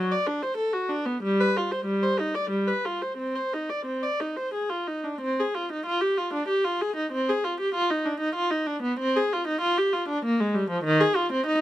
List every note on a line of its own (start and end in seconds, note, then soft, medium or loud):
0.00 0.12 F#3 medium
0.12 0.27 D5 medium
0.27 0.42 D4 medium
0.43 0.58 C5 medium
0.57 0.73 A4 medium
0.73 0.89 F#4 medium
0.89 1.05 D4 medium
1.06 1.22 B3 medium
1.23 1.39 G3 medium
1.41 1.56 B4 medium
1.57 1.72 F4 medium
1.72 1.87 C5 medium
1.86 2.02 G3 medium
2.03 2.19 C5 medium
2.20 2.36 D#4 medium
2.35 2.52 D5 medium
2.51 2.67 G3 medium
2.68 2.85 B4 soft
2.85 3.02 F4 soft
3.02 3.19 C5 soft
3.18 3.35 C4 medium
3.36 3.52 C5 soft
3.54 3.70 D#4 soft
3.70 3.86 D5 soft
3.86 4.02 C4 soft
4.03 4.20 D5 soft
4.20 4.37 D#4 soft
4.37 4.53 C5 soft
4.54 4.70 G#4 medium
4.70 4.87 F4 soft
4.87 5.04 D#4 soft
5.04 5.21 D4 soft
5.21 5.38 C4 medium
5.40 5.55 G#4 medium
5.55 5.71 F4 medium
5.72 5.86 D#4 medium
5.86 6.01 F4 medium
6.01 6.16 G4 medium
6.18 6.32 F4 medium
6.34 6.48 D4 medium
6.48 6.63 G4 medium
6.65 6.79 F4 medium
6.81 6.96 G#4 medium
6.96 7.11 D#4 medium
7.12 7.26 C4 medium
7.29 7.43 G#4 medium
7.45 7.58 F4 medium
7.60 7.74 G4 medium
7.74 7.88 F4 medium
7.90 8.04 D#4 medium
8.06 8.19 D4 medium
8.20 8.34 D#4 medium
8.35 8.50 F4 medium
8.51 8.66 D#4 medium
8.67 8.82 D4 medium
8.83 8.98 B3 medium
9.00 9.15 C4 medium
9.16 9.31 G#4 medium
9.33 9.47 F4 medium
9.48 9.62 D#4 medium
9.61 9.76 F4 medium
9.78 9.93 G4 medium
9.93 10.08 F4 medium
10.09 10.23 D4 medium
10.25 10.39 A#3 medium
10.40 10.55 G#3 medium
10.55 10.69 G3 medium
10.70 10.84 F3 medium
10.84 10.99 D#3 loud
11.00 11.15 G#4 medium
11.16 11.31 F4 medium
11.32 11.46 C4 medium
11.46 11.61 D#4 medium